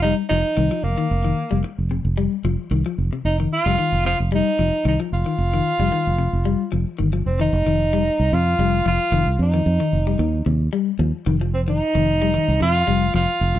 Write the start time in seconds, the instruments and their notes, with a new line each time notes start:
Already playing: fingered electric bass F1
0.02 clean electric guitar G3, tenor saxophone D#4
0.29 fingered electric bass F1, clean electric guitar F3, tenor saxophone D#4
0.57 fingered electric bass C2, clean electric guitar D#3
0.71 clean electric guitar F3
0.83 fingered electric bass F1, tenor saxophone A#3
0.98 clean electric guitar D#3
1.11 fingered electric bass F1
1.24 clean electric guitar D#3
1.51 fingered electric bass F1, clean electric guitar G3
1.64 muted clean electric guitar stroke
1.78 fingered electric bass F1
1.91 clean electric guitar C3
2.05 fingered electric bass F1
2.17 clean electric guitar G3
2.44 fingered electric bass F1, clean electric guitar F3
2.71 fingered electric bass C2, clean electric guitar D#3
2.86 clean electric guitar F3
2.98 fingered electric bass F1
3.13 clean electric guitar C3
3.25 fingered electric bass F1, tenor saxophone D#4
3.40 clean electric guitar D#3
3.53 tenor saxophone F4
3.66 fingered electric bass F1, clean electric guitar G3
3.79 clean electric guitar D#3
3.92 fingered electric bass F1
4.05 clean electric guitar C3, tenor saxophone F4
4.20 fingered electric bass F1
4.32 clean electric guitar G3, tenor saxophone D#4
4.59 fingered electric bass F1, clean electric guitar F3
4.85 fingered electric bass C2, clean electric guitar D#3, tenor saxophone D#4
5.00 clean electric guitar F3
5.13 fingered electric bass F1, tenor saxophone F4
5.26 clean electric guitar D#3
5.38 fingered electric bass F1
5.54 clean electric guitar D#3
5.79 fingered electric bass F1, clean electric guitar G3
5.92 clean electric guitar D#3
6.07 fingered electric bass F1
6.18 clean electric guitar C3
6.33 fingered electric bass F1
6.45 clean electric guitar G3
6.72 fingered electric bass F1, clean electric guitar F3
6.98 fingered electric bass G1, clean electric guitar D#3
7.13 clean electric guitar F3
7.26 fingered electric bass F1, tenor saxophone C4
7.40 clean electric guitar D#3, tenor saxophone D#4
7.53 fingered electric bass F1
7.66 fingered electric bass F1, clean electric guitar D#3
7.93 clean electric guitar G3
8.20 fingered electric bass C2
8.32 fingered electric bass F2, clean electric guitar C3, tenor saxophone F4
8.59 fingered electric bass F1, clean electric guitar G3
8.86 fingered electric bass F1, clean electric guitar F3, tenor saxophone F4
9.12 fingered electric bass F1, clean electric guitar D#3
9.26 fingered electric bass C2
9.39 fingered electric bass F2, tenor saxophone D#4
9.54 clean electric guitar D#3
9.66 fingered electric bass F2
9.80 clean electric guitar D#3
9.93 fingered electric bass F1
10.07 clean electric guitar G3
10.19 fingered electric bass D#2, clean electric guitar D#3
10.46 fingered electric bass D#2, clean electric guitar C3
10.73 clean electric guitar G3
10.99 fingered electric bass D#2, clean electric guitar F3
11.26 fingered electric bass F1, clean electric guitar D#3
11.41 clean electric guitar F3
11.54 tenor saxophone C4
11.68 clean electric guitar D#3, tenor saxophone D#4
11.95 fingered electric bass F1, clean electric guitar D#3
12.22 clean electric guitar G3
12.34 clean electric guitar D#3
12.48 fingered electric bass C2
12.60 fingered electric bass F2, clean electric guitar C3, tenor saxophone F4
12.87 fingered electric bass F1, clean electric guitar G3
13.14 fingered electric bass F1, clean electric guitar F3, tenor saxophone F4
13.41 fingered electric bass F1
13.55 fingered electric bass C2, muted clean electric guitar stroke